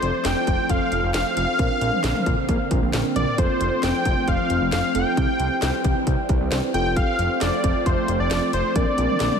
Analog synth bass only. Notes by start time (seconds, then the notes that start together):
0.02 F1
0.25 F1
0.47 F1
0.70 F1
0.92 F1
1.03 F1
1.15 F1
1.37 F1
1.59 A#1
1.81 A#1
2.04 A#1
2.27 A#1
2.49 A#1
2.71 A#1
2.82 A#1
2.94 A#1
3.16 A#1
3.38 F1
3.61 F1
3.83 F1
4.06 F1
4.28 F1
4.50 F1
4.61 F1
4.72 F1
4.95 F1
5.17 C2
5.40 C2
5.62 C2
5.85 C2
6.07 C2
6.29 C2
6.41 C2
6.52 C2
6.74 F1
7.19 F1
7.41 F1
7.64 F1
7.86 F1
8.09 F1
8.20 F1
8.31 F1
8.53 F1
8.76 A#1
8.98 A#1
9.20 A#1